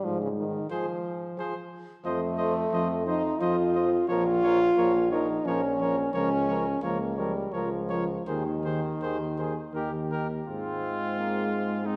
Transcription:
0.04 0.60 G#2 medium
0.04 0.21 F3 medium
0.22 0.29 C#3 medium
0.37 0.71 D#3 medium
0.70 0.86 F3 medium
0.70 1.70 F3 medium
0.70 0.88 G#4 medium
0.70 0.86 C5 medium
1.37 1.53 F3 medium
1.37 1.54 G#4 medium
1.37 1.55 C5 medium
2.04 2.65 F2 medium
2.04 2.20 F3 medium
2.04 3.04 A3 loud
2.04 2.20 C5 medium
2.04 2.21 D#5 medium
2.38 2.55 F3 medium
2.38 2.54 C5 soft
2.38 2.54 D#5 medium
2.73 3.33 F2 medium
2.73 2.88 F3 medium
2.73 2.89 C5 medium
2.73 2.89 D#5 medium
3.07 3.23 F3 medium
3.07 3.42 D#4 medium
3.07 3.22 C5 medium
3.07 3.23 D#5 soft
3.40 4.02 F2 medium
3.40 3.57 F3 medium
3.40 4.08 F4 medium
3.40 3.56 C5 medium
3.40 3.57 D#5 medium
3.75 3.90 F3 medium
3.75 3.91 C5 soft
3.75 3.90 D#5 medium
4.08 4.70 A#1 medium
4.08 4.24 F3 medium
4.08 5.09 F4 loud
4.08 4.26 A#4 medium
4.08 4.24 C#5 medium
4.43 4.59 F3 medium
4.43 4.60 A#4 medium
4.43 4.59 C#5 medium
4.77 5.38 A#1 medium
4.77 4.93 F3 medium
4.77 4.93 A#4 medium
4.77 4.93 C#5 medium
5.11 5.27 F3 medium
5.11 5.47 D#4 medium
5.11 5.28 A#4 medium
5.11 5.27 C#5 soft
5.46 6.07 A#1 medium
5.46 5.61 F3 medium
5.46 6.13 C#4 medium
5.46 5.63 A#4 medium
5.46 5.62 C#5 medium
5.80 5.95 F3 medium
5.80 5.97 A#4 medium
5.80 5.96 C#5 medium
6.14 6.75 C#2 medium
6.14 6.30 F3 medium
6.14 6.81 C#4 medium
6.14 6.30 A#4 medium
6.14 6.29 C#5 medium
6.48 6.64 F3 medium
6.48 6.65 A#4 medium
6.48 6.64 C#5 medium
6.82 7.45 C#2 medium
6.82 6.99 F3 medium
6.82 7.17 A#3 medium
6.82 7.00 A#4 medium
6.82 6.98 C#5 medium
7.17 7.34 F3 soft
7.17 7.54 G3 medium
7.17 7.34 A#4 medium
7.17 7.33 C#5 soft
7.53 8.19 C#2 medium
7.53 8.26 F3 medium
7.53 7.69 F3 medium
7.53 7.70 A#4 soft
7.53 7.69 C#5 soft
7.89 8.07 F3 soft
7.89 8.06 A#4 soft
7.89 8.05 C#5 soft
8.27 8.94 D#2 medium
8.27 10.08 D#3 medium
8.27 8.44 D#3 soft
8.27 8.44 G#4 soft
8.27 8.43 C5 soft
8.64 8.80 D#3 soft
8.64 8.81 G#4 soft
8.64 8.80 C5 soft
9.01 9.58 D#2 medium
9.01 9.17 D#3 soft
9.01 9.19 G#4 soft
9.01 9.18 C5 soft
9.38 9.54 D#3 soft
9.38 9.55 G#4 soft
9.38 9.54 C5 soft
9.73 10.40 D#2 medium
9.73 9.89 D#3 soft
9.73 9.92 G4 medium
9.73 9.91 A#4 soft
10.10 10.26 D#3 soft
10.10 10.28 G4 soft
10.10 10.28 A#4 soft
10.47 11.96 G#2 soft
10.47 11.82 G#3 soft
10.47 11.15 C4 soft
10.47 11.82 C4 soft
10.47 11.88 F4 medium
11.19 11.52 A#3 soft
11.52 11.87 G#3 soft
11.86 11.96 G#3 soft
11.86 11.96 C4 medium
11.86 11.96 C4 soft
11.86 11.96 D#4 medium

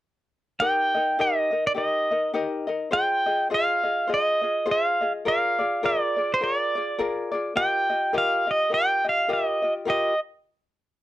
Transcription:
0.60 0.95 D#4 medium
0.60 0.94 G4 medium
0.60 0.94 A#4 medium
0.60 0.93 D#5 medium
0.60 1.20 G5 loud
0.94 1.18 D#4 soft
0.94 1.18 A#4 soft
0.94 1.18 D#5 medium
1.19 1.51 D#4 medium
1.19 1.53 G4 medium
1.19 1.51 A#4 medium
1.19 1.50 D#5 medium
1.19 1.67 D#5 medium
1.51 1.74 D#4 soft
1.51 1.75 A#4 soft
1.51 1.76 D#5 soft
1.67 1.72 D5 medium
1.74 2.10 D#4 medium
1.74 2.10 G4 medium
1.74 2.10 A#4 medium
1.74 2.10 D#5 soft
1.74 2.31 D#5 medium
2.11 2.33 D#4 soft
2.11 2.33 A#4 soft
2.11 2.34 D#5 soft
2.34 2.68 D#4 medium
2.34 2.68 G4 medium
2.34 2.67 A#4 medium
2.34 2.66 D#5 medium
2.67 2.91 D#4 soft
2.67 2.92 A#4 medium
2.67 2.91 D#5 medium
2.91 3.26 F4 medium
2.91 3.26 G#4 medium
2.91 3.26 C5 medium
2.91 3.25 D#5 medium
2.91 3.47 G5 loud
3.26 3.49 F4 soft
3.26 3.50 G#4 soft
3.26 3.50 D#5 soft
3.50 3.84 F4 medium
3.50 3.83 G#4 medium
3.50 3.84 C5 medium
3.50 3.82 D#5 medium
3.54 4.12 F5 loud
3.83 4.07 F4 soft
3.83 4.08 G#4 soft
3.83 4.08 D#5 soft
4.07 4.43 F4 medium
4.07 4.42 G#4 medium
4.07 4.42 C5 medium
4.07 4.40 D#5 medium
4.14 4.71 D#5 medium
4.42 4.65 F4 soft
4.42 4.66 G#4 soft
4.42 4.66 D#5 soft
4.66 5.01 F4 medium
4.66 5.01 G#4 medium
4.66 5.00 C5 medium
4.66 5.00 D#5 medium
4.71 5.12 F5 medium
5.01 5.24 F4 soft
5.01 5.25 G#4 soft
5.01 5.25 D#5 soft
5.25 5.59 F4 medium
5.25 5.59 G#4 medium
5.25 5.59 A#4 medium
5.25 5.57 D5 medium
5.25 5.85 F5 medium
5.59 5.82 F4 soft
5.59 5.83 G#4 soft
5.59 5.83 D5 medium
5.83 6.17 F4 medium
5.83 6.16 G#4 medium
5.83 6.17 A#4 medium
5.83 6.15 D5 medium
5.83 6.31 D5 medium
6.16 6.40 F4 soft
6.16 6.41 G#4 soft
6.16 6.40 D5 soft
6.34 6.43 C5 medium
6.41 6.75 F4 medium
6.41 6.75 G#4 soft
6.41 6.74 A#4 soft
6.41 6.74 D5 medium
6.41 7.00 D5 medium
6.75 6.98 F4 soft
6.75 6.98 G#4 soft
6.75 6.99 D5 medium
6.99 7.33 F4 medium
6.99 7.32 G#4 medium
6.99 7.32 A#4 medium
6.99 7.30 D5 medium
7.32 7.54 F4 soft
7.32 7.55 G#4 soft
7.32 7.56 D5 medium
7.55 7.89 F4 medium
7.55 7.89 G4 medium
7.55 7.89 A#4 medium
7.55 7.88 D#5 medium
7.55 8.16 G5 medium
7.90 8.12 F4 soft
7.90 8.13 G4 soft
7.90 8.13 D#5 soft
8.13 8.47 F4 medium
8.13 8.47 G4 medium
8.13 8.47 A#4 medium
8.13 8.45 D#5 medium
8.18 8.50 F5 medium
8.47 8.70 F4 soft
8.47 8.70 G4 soft
8.47 8.71 D#5 soft
8.51 8.71 D#5 medium
8.70 9.05 F4 medium
8.70 9.04 G4 medium
8.70 9.04 A#4 soft
8.70 9.03 D#5 medium
8.74 9.07 G5 medium
9.04 9.28 F4 soft
9.04 9.28 G4 soft
9.04 9.28 D#5 soft
9.09 9.31 F5 medium
9.28 9.62 F4 medium
9.28 9.62 G4 medium
9.28 9.62 A#4 medium
9.28 9.61 D#5 medium
9.33 9.73 D#5 medium
9.62 9.85 F4 soft
9.62 9.86 G4 soft
9.62 9.86 D#5 soft
9.85 10.13 F4 medium
9.85 10.14 G4 medium
9.85 10.12 A#4 medium
9.85 10.14 D#5 medium
9.90 10.19 D#5 medium

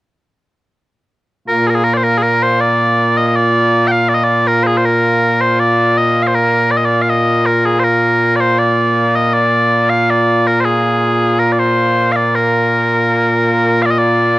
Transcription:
1.48 14.39 A#2 medium
1.48 14.39 A#3 medium
1.48 14.39 F4 medium
1.48 1.67 A#4 loud
1.67 1.70 G#4 medium
1.67 1.75 A#4 medium
1.75 1.84 G#4 medium
1.84 1.94 A#4 loud
1.94 2.04 C5 medium
1.94 1.97 D5 medium
2.04 2.18 A#4 loud
2.18 2.22 G#4 medium
2.22 2.43 A#4 loud
2.43 2.60 C5 medium
2.60 3.17 D5 medium
3.17 3.27 D#5 medium
3.27 3.36 D#5 medium
3.36 3.87 D5 loud
3.87 4.09 F5 medium
3.87 3.91 G5 medium
4.09 4.14 D5 medium
4.14 4.24 D#5 medium
4.24 4.47 D5 loud
4.47 4.63 A#4 medium
4.63 4.77 G#4 medium
4.63 4.67 C5 medium
4.77 4.85 C5 medium
4.85 5.41 A#4 loud
5.41 5.59 C5 medium
5.59 5.98 D5 loud
5.98 6.23 D#5 loud
6.23 6.27 F5 medium
6.27 6.35 C5 medium
6.35 6.71 A#4 loud
6.71 6.77 D5 medium
6.77 6.85 D#5 medium
6.85 7.02 D5 loud
7.02 7.09 F5 medium
7.09 7.46 D#5 medium
7.46 7.65 A#4 medium
7.65 7.80 G#4 medium
7.80 7.84 C5 medium
7.84 8.36 A#4 medium
8.36 8.40 D5 medium
8.40 8.59 C5 medium
8.59 9.16 D5 medium
9.16 9.34 D#5 medium
9.34 9.90 D5 loud
9.90 10.10 F5 medium
10.10 10.47 D5 loud
10.47 10.60 A#4 medium
10.60 10.65 C5 medium
10.65 11.39 G#4 medium
11.39 11.52 A#4 medium
11.52 11.59 D5 medium
11.59 12.12 C5 medium
12.12 12.35 D5 medium
12.12 12.16 F5 medium
12.35 13.82 A#4 medium
13.82 13.91 D5 loud
13.82 13.86 F5 loud
13.91 13.99 D#5 medium
13.99 14.39 D5 loud

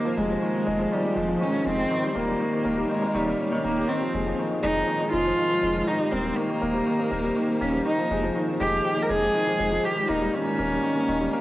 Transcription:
0.00 1.89 G#3 medium
0.00 0.19 A#3 loud
0.00 3.85 D#4 medium
0.00 1.89 F4 medium
0.00 1.87 C5 medium
0.05 0.12 F3 medium
0.17 0.36 F1 loud
0.17 0.24 G#3 medium
0.17 0.94 G#3 loud
0.30 0.41 F3 medium
0.42 0.53 D#3 medium
0.54 0.61 D#3 medium
0.67 0.86 F1 loud
0.67 0.78 G#3 medium
0.79 0.91 F3 medium
0.91 1.03 D#3 medium
0.91 1.18 G3 medium
1.04 1.15 G#3 medium
1.16 1.35 F1 loud
1.16 1.43 F3 medium
1.16 1.23 G#3 medium
1.28 1.40 F3 medium
1.41 1.53 D#3 medium
1.41 1.68 C#4 medium
1.53 1.65 F3 medium
1.66 1.85 F1 medium
1.66 1.78 G#3 medium
1.66 2.09 C4 loud
1.78 1.90 F3 medium
1.90 2.02 D#3 medium
1.90 3.87 A#3 medium
1.90 3.87 G4 medium
1.90 3.87 C#5 medium
2.03 2.10 G3 medium
2.09 2.17 C4 medium
2.15 2.34 D#1 medium
2.15 2.22 A#3 medium
2.15 2.90 A#3 loud
2.28 2.40 G3 medium
2.40 2.51 D#3 medium
2.53 2.60 D#3 medium
2.65 2.84 D#1 loud
2.65 2.77 A#3 medium
2.77 2.89 G3 medium
2.90 3.02 D#3 medium
2.90 3.17 G#3 medium
3.02 3.14 A#3 medium
3.14 3.33 D#1 loud
3.14 3.26 D#3 loud
3.14 3.40 G3 medium
3.27 3.39 G3 medium
3.40 3.51 C#4 medium
3.52 3.64 D#3 loud
3.64 3.83 D#1 medium
3.64 3.76 A#3 medium
3.64 3.90 A#3 loud
3.77 3.84 G4 medium
3.88 4.01 D#3 medium
3.88 5.85 G#3 medium
3.88 4.38 C4 loud
3.88 11.41 D#4 medium
3.88 5.85 F4 medium
3.88 9.80 C5 medium
4.02 4.09 F3 medium
4.14 4.33 F1 medium
4.14 4.21 G#3 medium
4.27 4.38 F3 medium
4.39 4.49 D#3 medium
4.51 4.58 D#3 medium
4.63 4.82 F1 medium
4.63 4.75 G#3 loud
4.63 5.09 D#4 loud
4.75 4.87 F3 medium
4.88 5.00 D#3 medium
5.00 5.11 G#3 medium
5.13 5.32 F1 loud
5.13 5.20 G#3 medium
5.13 5.89 F4 loud
5.25 5.37 F3 medium
5.38 5.50 D#3 medium
5.50 5.62 F3 medium
5.63 5.82 F1 medium
5.63 5.74 G#3 medium
5.75 5.87 F3 medium
5.87 5.99 D#3 medium
5.87 7.84 A#3 medium
5.87 6.13 D#4 loud
5.87 7.84 G4 medium
6.00 6.07 G3 medium
6.12 6.31 D#1 loud
6.12 6.19 A#3 medium
6.12 6.38 C4 loud
6.25 6.36 G3 medium
6.37 6.48 D#3 medium
6.37 7.63 A#3 loud
6.49 6.56 D#3 medium
6.62 6.81 D#1 medium
6.62 6.73 A#3 medium
6.74 6.86 G3 medium
6.86 6.98 D#3 medium
6.99 7.10 A#3 medium
7.11 7.30 D#1 loud
7.11 7.18 A#3 medium
7.24 7.35 G3 medium
7.36 7.48 D#3 medium
7.49 7.60 G3 medium
7.61 7.80 D#1 medium
7.61 7.73 A#3 medium
7.61 7.86 C#4 loud
7.73 7.85 G3 medium
7.86 7.97 D#3 medium
7.86 9.82 G#3 medium
7.86 8.32 D#4 medium
7.86 9.82 F4 medium
7.98 8.05 F3 medium
8.10 8.29 F1 loud
8.10 8.18 G#3 medium
8.23 8.35 F3 medium
8.35 8.46 D#3 medium
8.48 8.55 D#3 medium
8.60 8.79 F1 loud
8.60 8.72 G#3 medium
8.60 9.04 G4 loud
8.72 8.84 F3 medium
8.85 8.97 D#3 medium
8.97 9.08 G#3 medium
9.02 9.11 A#4 medium
9.09 9.28 F1 loud
9.09 9.17 G#3 medium
9.09 9.86 G#4 loud
9.22 9.34 F3 medium
9.34 9.46 D#3 medium
9.47 9.59 F3 medium
9.59 9.78 F1 medium
9.59 9.71 G#3 medium
9.72 9.83 F3 medium
9.84 9.96 D#3 medium
9.84 11.41 A#3 medium
9.84 11.41 G4 medium
9.84 10.11 G4 loud
9.84 11.41 C#5 medium
9.96 10.04 G3 medium
10.09 10.28 D#1 loud
10.09 10.16 A#3 medium
10.09 10.35 D#4 loud
10.21 10.33 G3 medium
10.33 10.45 D#3 medium
10.33 11.41 C#4 loud
10.46 10.53 D#3 medium
10.58 10.77 D#1 medium
10.58 10.70 A#3 medium
10.71 10.83 G3 medium
10.83 10.95 D#3 medium
10.96 11.08 A#3 medium
11.08 11.27 D#1 loud
11.08 11.20 D#3 medium
11.21 11.32 G3 medium
11.33 11.41 A#3 loud

